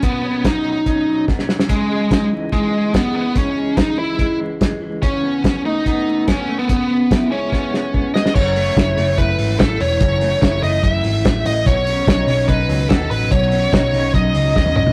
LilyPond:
<<
  \new Staff \with { instrumentName = "Lead electric guitar" } { \time 4/4 \key fis \dorian \tempo 4 = 144 b4 dis'2 r4 | gis4. r8 gis4 b8 b8 | cis'4 dis'8 e'4 r4. | cis'4. dis'4. cis'8. b16 |
b4. cis'2 dis''8 | cis''2 b'4 a'8 cis''8~ | cis''4 cis''8 dis''8 e''4. dis''8 | cis''2 b'4 a'8 b'8 |
cis''4 cis''4 dis''4 dis''8 dis''8 | }
  \new Staff \with { instrumentName = "Clean electric guitar" } { \time 4/4 \key fis \dorian <b, fis cis' dis'>8 cis'8 dis'8 fis8 cis'8 fis8 b16 cis'16 fis8 | cis8 gis8 dis'8 e8 gis8 e8 gis8 e8 | cis8 gis4 e8 gis8 e8 gis8 e8 | cis8 b4 a8 b8 a4 a8 |
cis8 b8 e'8 gis8 b8 gis8 b8 gis8 | fis,8 a8 e'8 a8 e'8 e8 a8 e8 | fis,8 a8 e'8 a8 e'8 e8 a8 e8 | b,8 cis'8 dis'8 cis'8 dis'8 fis8 b16 cis'16 fis8 |
b,8 cis'8 dis'8 cis'8 dis'8 fis8 cis'8 fis8 | }
  \new Staff \with { instrumentName = "Picked electric bass" } { \clef bass \time 4/4 \key fis \dorian r1 | r1 | r1 | r1 |
r1 | fis,,4 fis,,8 fis,,8 fis,,8 gis,,8 a,,8 e,,8 | fis,,4 fis,,8 fis,,8 fis,,8 gis,,8 a,,8 a,,8 | b,,4 b,,8 b,,8 b,,8 cis,8 dis,8 a,,8 |
b,,4 b,,8 b,,8 b,,8 cis,8 dis,8 b,,8 | }
  \new DrumStaff \with { instrumentName = "Drums" } \drummode { \time 4/4 <hh bd>4 <hh bd sn>4 <hh bd>4 <bd sn>16 sn16 sn16 sn16 | <hh bd>4 <hh bd sn>4 <hh bd>4 <hh bd sn>4 | <hh bd>4 <hh bd sn>4 <hh bd>4 <hh bd sn>4 | <hh bd>4 <hh bd sn>4 <hh bd>4 <hh bd sn>4 |
<hh bd>4 <hh bd sn>4 <bd sn>8 sn8 bd8 sn16 sn16 | <cymc bd>8 hho8 <hhp bd cymr sn>8 hho8 <hhp bd cymr>8 hho8 <hhp bd cymr sn>8 hho8 | <hhp bd cymr>8 hho8 <hhp bd cymr sn>8 hho8 <hhp bd cymr>8 hho8 <hhp bd cymr sn>8 hho8 | <hhp bd cymr>8 hho8 <hhp bd cymr sn>8 hho8 <hhp bd cymr>8 hho8 <hhp bd cymr sn>8 hho8 |
<hhp bd cymr>8 hho8 <hhp bd cymr sn>8 hho8 <hhp bd cymr>8 hho8 <bd sn>16 tommh16 toml16 tomfh16 | }
>>